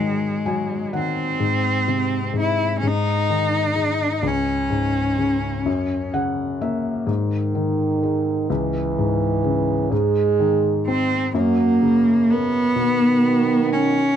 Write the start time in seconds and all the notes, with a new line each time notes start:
Already playing: G#2 F#3 G#3
0.00 D#3
0.46 F#3 G#5
0.93 D#3 F#5
0.98 C4
1.40 G#2
1.88 C3
2.34 G#2
2.40 E4
2.79 G#2 C#4
2.87 D#4
3.30 D#3
3.76 G#3
4.23 C#2
4.27 C#4
4.70 G#2
5.18 C#3
5.66 F#2
6.14 C#3 F#5
6.61 A#3 E5
7.07 G#2 D#3
7.55 D#3
8.03 G#3
8.50 C#2 E3
8.99 G#2
9.44 C#3
9.91 G#2 G#3
10.39 D#3
10.87 C4
11.32 F#2 F#3
11.36 A#3
11.82 C#3
12.30 B3 A#4
12.76 B2 D#3 F#3 B3 F#4
13.73 C#4